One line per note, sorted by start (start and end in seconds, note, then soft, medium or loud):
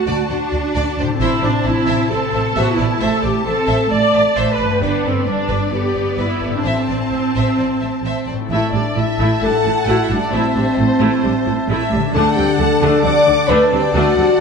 0.00 1.13 D3 soft
0.00 0.30 A3 soft
0.00 1.15 A3 soft
0.00 1.17 D4 soft
0.00 0.95 F#4 medium
0.00 0.97 F#4 medium
0.00 1.14 A4 soft
0.00 1.16 A5 soft
0.07 0.16 D2 medium
0.07 0.28 D5 medium
0.29 0.38 D2 soft
0.29 1.18 D4 medium
0.29 0.38 C5 soft
0.29 0.38 D5 soft
0.52 0.61 D2 soft
0.52 0.60 D5 soft
0.75 0.83 D2 medium
0.75 0.97 D5 medium
0.98 1.06 D2 soft
0.98 4.74 A2 medium
0.98 1.07 C5 soft
0.98 1.07 D5 medium
1.06 4.77 C3 soft
1.11 4.79 E4 soft
1.15 4.81 A4 soft
1.20 1.28 A1 medium
1.20 2.09 C4 medium
1.20 1.41 E4 medium
1.20 1.41 C5 medium
1.20 1.42 E5 medium
1.20 4.78 A5 medium
1.41 1.50 A1 soft
1.41 1.51 D4 medium
1.41 1.66 D4 medium
1.41 1.51 C5 soft
1.41 1.51 D5 soft
1.63 1.73 A1 soft
1.63 2.11 E4 medium
1.63 1.72 C5 soft
1.63 1.71 E5 soft
1.68 2.11 E4 medium
1.86 1.96 A1 medium
1.86 2.08 C5 medium
1.86 2.08 E5 medium
2.09 2.18 A1 soft
2.09 2.54 C4 medium
2.09 2.55 A4 medium
2.09 2.56 A4 medium
2.09 2.17 C5 soft
2.09 2.18 D5 soft
2.34 2.42 A1 soft
2.34 2.42 C5 soft
2.34 2.42 E5 soft
2.56 2.64 A1 medium
2.56 3.00 B3 medium
2.56 2.71 F#4 medium
2.56 2.72 F#4 medium
2.56 2.76 C5 medium
2.56 2.76 E5 medium
2.72 3.01 E4 medium
2.72 3.02 E4 medium
2.77 2.87 A1 soft
2.77 2.85 C5 soft
2.77 2.85 D5 soft
3.00 3.09 A1 medium
3.00 3.45 A3 medium
3.00 3.24 A4 medium
3.00 3.25 A4 medium
3.00 3.21 C5 medium
3.00 3.21 E5 medium
3.21 3.32 A1 soft
3.21 3.45 G4 medium
3.21 3.46 G4 medium
3.21 3.30 C5 soft
3.21 3.29 D5 soft
3.45 3.54 A1 soft
3.45 3.90 C4 medium
3.45 3.90 A4 medium
3.45 3.91 A4 medium
3.45 3.54 C5 soft
3.45 3.54 E5 soft
3.66 3.76 A1 medium
3.66 3.88 C5 medium
3.66 3.89 E5 medium
3.90 4.00 A1 soft
3.90 4.80 A3 medium
3.90 3.98 C5 soft
3.90 4.35 D5 medium
3.90 3.99 D5 soft
3.90 4.36 D5 medium
4.13 4.23 A1 soft
4.13 4.21 C5 soft
4.13 4.21 E5 soft
4.35 4.45 A1 medium
4.35 4.42 C5 medium
4.35 4.55 C5 medium
4.35 4.52 C5 medium
4.35 4.57 E5 medium
4.50 4.80 B4 medium
4.50 4.81 B4 medium
4.57 4.67 A1 soft
4.57 4.65 C5 soft
4.57 4.65 D5 soft
4.63 6.57 G2 soft
4.67 6.60 B3 soft
4.72 6.62 G4 soft
4.76 6.64 B4 soft
4.82 4.90 G1 medium
4.82 5.27 B3 soft
4.82 5.04 D4 medium
4.82 5.05 D4 medium
4.82 5.03 B4 medium
4.82 6.62 D5 medium
5.04 5.13 G1 soft
5.04 5.26 C4 soft
5.04 5.28 C4 medium
5.04 5.14 A4 soft
5.04 5.14 B4 soft
5.26 5.36 G1 soft
5.26 5.73 G3 soft
5.26 5.73 D4 medium
5.26 5.35 B4 soft
5.48 5.57 G1 medium
5.48 5.70 B4 medium
5.72 5.81 G1 soft
5.72 6.63 B3 medium
5.72 6.19 G4 medium
5.72 6.18 G4 medium
5.72 5.81 A4 soft
5.72 5.81 B4 soft
5.95 6.03 G1 soft
5.95 6.05 B4 soft
6.18 6.26 G1 soft
6.18 6.53 E4 medium
6.18 6.39 B4 medium
6.40 6.50 G1 soft
6.40 6.48 A4 soft
6.40 6.48 B4 soft
6.47 8.31 A2 soft
6.51 10.41 C4 soft
6.55 6.66 D4 soft
6.55 8.40 E4 soft
6.60 8.23 C4 soft
6.60 8.45 A4 soft
6.60 6.86 C5 soft
6.65 6.73 A1 soft
6.65 8.28 C4 medium
6.65 8.25 C4 medium
6.65 6.87 E5 medium
6.65 8.26 A5 soft
6.88 6.96 A1 soft
6.88 6.97 C5 soft
6.88 6.97 D5 soft
7.12 7.20 A1 soft
7.12 7.20 C5 soft
7.12 7.20 E5 soft
7.35 7.43 A1 medium
7.35 7.56 C5 medium
7.35 7.57 E5 medium
7.58 7.66 A1 soft
7.58 7.67 C5 soft
7.58 7.66 D5 soft
7.81 7.89 A1 soft
7.81 7.89 C5 soft
7.81 7.89 E5 soft
8.04 8.12 A1 soft
8.04 8.26 C5 soft
8.04 8.26 E5 soft
8.27 8.35 A1 soft
8.27 8.35 C5 soft
8.27 8.35 D5 soft
8.32 12.07 A2 soft
8.37 11.99 A3 soft
8.41 12.11 E4 soft
8.46 8.58 A2 soft
8.46 12.08 A4 soft
8.46 12.10 E5 soft
8.50 8.58 A1 medium
8.50 8.72 A3 medium
8.50 8.71 E4 medium
8.50 8.72 E4 medium
8.50 8.72 E5 medium
8.50 12.10 A5 soft
8.50 12.11 A5 soft
8.72 8.81 A1 soft
8.72 8.80 A2 soft
8.72 8.83 G3 soft
8.72 8.95 D4 medium
8.72 8.82 D4 soft
8.72 8.95 D5 medium
8.95 9.04 A1 soft
8.95 9.04 A2 soft
8.95 9.04 A3 soft
8.95 9.40 E4 medium
8.95 9.05 E4 soft
8.95 9.42 E5 medium
9.18 9.27 A1 medium
9.18 9.26 A2 medium
9.18 9.40 A3 medium
9.18 9.40 E4 medium
9.41 9.50 A1 soft
9.41 9.50 A2 soft
9.41 9.51 G3 soft
9.41 9.51 D4 soft
9.41 9.87 A4 medium
9.41 10.29 F#5 medium
9.41 9.87 A5 medium
9.63 9.73 A1 soft
9.63 9.71 A2 soft
9.63 9.74 A3 soft
9.63 9.74 E4 soft
9.86 9.95 A1 medium
9.86 9.94 A2 medium
9.86 10.08 A3 medium
9.86 10.08 E4 medium
9.86 9.95 F#4 medium
9.86 10.03 F#5 medium
10.04 10.19 E4 medium
10.04 10.10 E5 soft
10.09 10.18 A1 soft
10.09 10.17 A2 soft
10.09 10.18 G3 medium
10.09 10.18 D4 soft
10.18 10.34 D4 medium
10.18 10.33 D5 medium
10.31 10.41 A1 medium
10.31 10.39 A2 medium
10.31 10.54 A3 medium
10.31 11.88 C4 medium
10.31 10.54 E4 medium
10.31 11.92 C5 medium
10.31 10.79 E5 medium
10.54 10.65 A1 soft
10.54 10.62 A2 soft
10.54 10.64 G3 soft
10.54 10.63 D4 soft
10.77 10.86 A1 medium
10.77 10.85 A2 soft
10.77 10.86 A3 soft
10.77 10.86 E4 medium
10.77 11.69 C5 medium
10.99 11.10 A1 medium
10.99 11.07 A2 medium
10.99 11.22 A3 medium
10.99 11.21 E4 medium
11.22 11.32 A1 soft
11.22 11.30 A2 soft
11.22 11.31 G3 soft
11.22 11.31 D4 soft
11.44 11.55 A1 soft
11.44 11.52 A2 soft
11.44 11.54 A3 medium
11.44 11.54 E4 medium
11.67 11.77 A1 medium
11.67 11.75 A2 medium
11.67 11.90 A3 medium
11.67 11.90 E4 medium
11.67 12.14 E5 medium
11.90 12.00 A1 medium
11.90 11.98 A2 medium
11.90 11.99 G3 medium
11.90 11.99 D4 soft
11.96 14.40 D3 medium
12.00 14.40 A3 soft
12.05 14.40 D4 medium
12.10 12.20 D3 medium
12.10 14.40 A4 soft
12.10 14.40 D5 medium
12.14 12.23 D2 medium
12.14 12.35 A3 medium
12.14 12.35 D4 medium
12.14 12.35 A4 loud
12.14 13.03 F#5 medium
12.14 12.35 A5 medium
12.14 14.40 A5 medium
12.35 12.46 D2 medium
12.35 12.43 D3 soft
12.35 12.45 G3 medium
12.35 12.45 C4 soft
12.35 12.59 G4 medium
12.35 12.58 G5 medium
12.58 12.67 D2 medium
12.58 12.66 D3 medium
12.58 12.67 A3 medium
12.58 12.67 D4 soft
12.58 13.03 A4 medium
12.58 13.03 A5 medium
12.81 12.90 D2 medium
12.81 12.89 D3 medium
12.81 13.03 A3 medium
12.81 13.03 D4 medium
13.03 13.12 D2 medium
13.03 13.12 D3 medium
13.03 13.11 G3 soft
13.03 13.11 C4 medium
13.03 13.48 D5 loud
13.03 13.49 F#5 medium
13.03 13.48 D6 medium
13.27 13.35 D2 medium
13.27 13.35 D3 medium
13.27 13.35 A3 medium
13.27 13.35 D4 medium
13.48 13.57 D2 medium
13.48 13.57 D3 medium
13.48 13.71 A3 medium
13.48 13.70 D4 medium
13.48 13.64 B4 loud
13.48 14.40 D5 medium
13.48 13.64 B5 medium
13.63 13.81 A4 medium
13.63 13.69 A5 soft
13.71 13.80 D2 medium
13.71 13.79 D3 medium
13.71 13.80 G3 medium
13.71 13.80 C4 medium
13.79 13.95 G4 medium
13.79 13.94 G5 medium
13.93 14.02 D2 medium
13.93 14.01 D3 medium
13.93 14.16 A3 medium
13.93 14.16 D4 medium
13.93 14.40 F#4 loud
13.93 14.40 F#5 medium
14.16 14.24 D2 medium
14.16 14.25 D3 medium
14.16 14.26 G3 medium
14.16 14.26 C4 medium